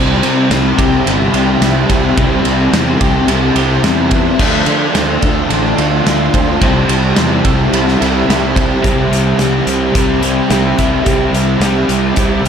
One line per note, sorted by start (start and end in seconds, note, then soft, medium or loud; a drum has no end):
0.00 0.17 C2 loud
0.00 0.51 C3 loud
0.00 1.31 E3 loud
0.00 0.23 G3 loud
0.00 0.20 C4 loud
0.00 0.44 C4 medium
0.00 1.31 E4 loud
0.00 4.35 G4 medium
0.00 4.35 E5 medium
0.00 2.14 B5 medium
0.00 8.81 C6 medium
0.20 0.45 C3 medium
0.20 0.53 G3 medium
0.20 0.53 C4 medium
0.20 ride medium
0.50 0.72 C2 medium
0.50 1.05 C3 medium
0.50 0.79 G3 medium
0.50 0.77 C4 medium
0.50 snare loud
0.50 ride loud
0.77 1.00 C2 medium
0.77 1.05 G3 medium
0.77 1.08 C4 medium
0.77 1.32 G4 medium
0.77 kick medium
0.77 ride medium
1.05 1.28 G1 medium
1.05 1.58 C3 medium
1.05 1.34 G3 loud
1.05 1.32 C4 loud
1.05 1.61 E4 medium
1.05 ride loud
1.32 1.56 C2 medium
1.32 1.60 E3 medium
1.32 1.60 G3 medium
1.32 1.62 C4 medium
1.32 1.59 E4 medium
1.32 2.72 G4 medium
1.32 ride medium
1.36 1.59 C3 medium
1.59 1.83 C2 medium
1.59 2.14 C3 medium
1.59 2.15 E3 medium
1.59 1.89 G3 medium
1.59 1.86 C4 medium
1.59 3.00 E4 medium
1.59 snare loud
1.59 ride loud
1.64 2.16 E4 medium
1.87 2.11 C2 medium
1.87 2.16 G3 medium
1.87 2.19 C4 medium
1.87 kick medium
1.87 ride medium
2.15 2.39 C2 loud
2.15 2.68 C3 medium
2.15 3.54 E3 medium
2.15 2.44 G3 medium
2.15 2.41 C4 loud
2.15 8.81 A5 medium
2.15 kick loud
2.15 ride loud
2.20 3.55 E4 loud
2.41 2.67 C2 medium
2.41 2.72 C4 medium
2.41 ride medium
2.45 2.70 G3 medium
2.69 2.95 E2 medium
2.69 3.26 C3 medium
2.69 3.00 G3 medium
2.69 2.97 C4 medium
2.73 snare loud
2.73 ride loud
2.98 3.23 C2 medium
2.98 3.28 G3 medium
2.98 3.30 C4 medium
2.98 3.55 G4 medium
2.98 kick medium
2.98 ride medium
3.27 3.50 C2 medium
3.27 3.83 C3 medium
3.27 3.57 G3 loud
3.27 3.55 C4 loud
3.27 3.82 E4 medium
3.27 ride loud
3.55 3.78 C2 medium
3.55 3.83 E3 medium
3.55 3.84 G3 medium
3.55 3.86 C4 medium
3.55 3.82 E4 medium
3.55 4.39 G4 medium
3.55 ride medium
3.60 3.82 C3 medium
3.83 4.27 E2 medium
3.83 4.37 C3 medium
3.83 4.38 E3 medium
3.83 4.15 G3 medium
3.83 4.13 C4 medium
3.83 4.39 E4 medium
3.83 snare loud
3.83 ride medium
4.11 4.39 B3 medium
4.11 4.43 C4 medium
4.11 kick medium
4.11 ride medium
4.16 4.39 G3 medium
4.39 4.61 D2 loud
4.39 4.94 D3 loud
4.39 4.66 F3 medium
4.39 4.70 A3 loud
4.39 6.60 F4 medium
4.39 5.75 F4 loud
4.39 6.59 D5 medium
4.39 kick loud
4.39 crash loud
4.43 4.66 D4 loud
4.66 4.89 D3 medium
4.66 6.06 F3 medium
4.66 4.97 D4 medium
4.66 ride medium
4.70 4.97 A3 medium
4.94 5.17 D2 medium
4.94 5.48 D3 medium
4.94 5.26 A3 medium
4.94 6.33 C4 medium
4.94 5.22 D4 medium
4.94 snare loud
4.94 ride loud
5.22 5.44 D2 loud
5.22 5.52 D4 medium
5.22 5.75 A4 medium
5.22 kick medium
5.22 ride medium
5.27 5.50 A3 medium
5.49 5.72 A1 loud
5.49 6.03 D3 medium
5.49 5.78 A3 loud
5.49 6.04 D4 medium
5.49 ride medium
5.53 5.76 D4 loud
5.76 6.00 D2 medium
5.76 6.04 A3 medium
5.76 6.06 D4 medium
5.76 6.03 F4 medium
5.76 6.60 A4 medium
5.76 ride medium
5.80 6.03 D3 medium
6.04 6.28 D2 medium
6.04 6.59 D3 medium
6.04 6.35 A3 medium
6.04 6.61 D4 medium
6.04 6.31 D4 medium
6.04 snare loud
6.04 ride loud
6.09 6.61 F4 medium
6.32 6.56 D2 medium
6.32 6.61 A3 medium
6.32 7.16 C4 medium
6.32 6.59 D4 medium
6.32 kick medium
6.32 ride medium
6.60 6.84 C2 medium
6.60 7.15 C3 medium
6.60 7.99 E3 loud
6.60 6.90 G3 medium
6.60 6.88 G3 medium
6.60 6.87 C4 loud
6.60 8.82 E5 medium
6.60 kick loud
6.60 ride loud
6.64 7.99 E4 loud
6.64 8.82 G4 medium
6.88 7.11 C2 medium
6.88 8.28 G3 medium
6.88 7.17 G3 medium
6.88 7.17 C4 medium
6.88 ride medium
7.16 7.40 E2 medium
7.16 7.71 C3 medium
7.16 7.46 G3 medium
7.16 8.54 C4 medium
7.16 7.43 C4 medium
7.16 snare loud
7.16 ride loud
7.44 7.67 C2 medium
7.44 7.72 G3 medium
7.44 7.73 C4 medium
7.44 8.00 A4 medium
7.44 kick medium
7.44 ride medium
7.72 7.95 C2 medium
7.72 8.26 C3 loud
7.72 8.02 G3 loud
7.72 7.99 C4 loud
7.72 8.26 E4 medium
7.72 ride loud
7.88 snare soft
8.00 8.23 C2 medium
8.00 8.28 E3 medium
8.00 8.27 G3 medium
8.00 8.29 C4 medium
8.00 8.26 E4 medium
8.00 8.84 A4 medium
8.00 ride medium
8.04 8.27 C3 medium
8.27 8.72 C2 medium
8.27 8.82 C3 medium
8.27 8.83 E3 medium
8.27 8.58 G3 medium
8.27 8.54 C4 medium
8.27 8.83 E4 medium
8.27 snare loud
8.27 ride medium
8.32 8.84 E4 medium
8.55 8.83 G3 medium
8.55 8.82 C4 medium
8.55 8.83 C4 medium
8.55 kick medium
8.55 ride medium
8.83 9.06 C2 loud
8.83 9.39 C3 medium
8.83 9.39 E3 medium
8.83 9.38 G3 medium
8.83 9.41 G3 loud
8.83 9.42 C4 medium
8.83 12.48 G4 medium
8.83 12.48 E5 medium
8.83 12.48 B5 medium
8.83 11.04 C6 medium
8.83 kick loud
8.83 closed hi-hat medium
8.87 9.42 E4 loud
9.10 9.33 C2 medium
9.10 9.38 C3 medium
9.10 9.38 G3 medium
9.10 9.39 C4 medium
9.10 closed hi-hat medium
9.39 9.61 C2 medium
9.39 9.95 C3 medium
9.39 9.94 E3 medium
9.39 10.79 G3 medium
9.39 9.96 G3 medium
9.39 9.99 C4 medium
9.39 9.97 E4 medium
9.39 snare loud
9.39 closed hi-hat medium
9.66 9.89 C2 medium
9.66 9.92 C3 medium
9.66 9.93 G3 medium
9.66 9.94 C4 loud
9.66 closed hi-hat medium
9.95 10.39 C2 medium
9.95 10.49 C3 medium
9.95 10.49 E3 medium
9.95 10.24 G3 medium
9.95 10.21 C4 loud
9.95 10.77 E4 medium
9.95 10.53 E4 loud
9.95 kick loud
9.95 closed hi-hat medium
9.99 10.23 C4 loud
10.21 10.47 C3 medium
10.21 10.47 G3 loud
10.21 10.52 C4 medium
10.21 11.62 G4 medium
10.21 closed hi-hat medium
10.26 10.51 G3 medium
10.50 10.72 C2 medium
10.50 11.06 C3 medium
10.50 11.05 E3 medium
10.50 11.08 G3 medium
10.50 11.10 C4 medium
10.50 11.08 E4 medium
10.50 snare loud
10.50 closed hi-hat medium
10.77 11.01 C2 medium
10.77 11.04 C3 medium
10.77 11.04 G3 medium
10.77 11.06 C4 medium
10.77 12.16 E4 medium
10.77 kick medium
10.77 snare soft
10.77 closed hi-hat medium
11.05 11.29 C2 loud
11.05 11.60 C3 medium
11.05 11.59 E3 medium
11.05 11.61 G3 medium
11.05 11.33 C4 loud
11.05 12.48 D6 medium
11.05 kick loud
11.05 closed hi-hat loud
11.09 11.62 G3 loud
11.09 11.63 C4 medium
11.09 11.63 E4 loud
11.33 11.55 C2 medium
11.33 11.59 C3 medium
11.33 11.60 G3 medium
11.33 11.61 C4 medium
11.33 closed hi-hat medium
11.60 11.83 C2 medium
11.60 12.15 C3 medium
11.60 12.16 E3 medium
11.60 12.48 G3 medium
11.60 12.17 G3 medium
11.60 12.19 C4 medium
11.60 12.18 E4 medium
11.60 snare loud
11.60 closed hi-hat loud
11.88 12.11 C2 medium
11.88 12.16 C3 loud
11.88 12.16 G3 loud
11.88 12.18 C4 loud
11.88 closed hi-hat medium
12.16 12.39 C2 medium
12.16 12.48 C3 loud
12.16 12.48 E3 medium
12.16 12.45 G3 medium
12.16 12.43 C4 loud
12.16 12.48 E4 medium
12.16 12.48 E4 loud
12.16 kick loud
12.16 closed hi-hat loud
12.43 12.48 C2 medium
12.43 12.48 C4 medium